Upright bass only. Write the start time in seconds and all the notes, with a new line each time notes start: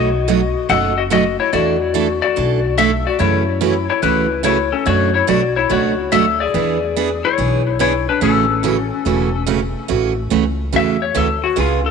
Already playing: B1
0.69 F#1
1.53 E2
2.37 B1
3.20 F#2
4.03 C#2
4.87 F#2
5.29 B1
5.71 C#2
6.13 D2
6.54 E2
7.38 B1
8.22 A1
9.06 E1
9.90 A1
10.32 C#2
10.74 E2
11.16 D2
11.57 C#2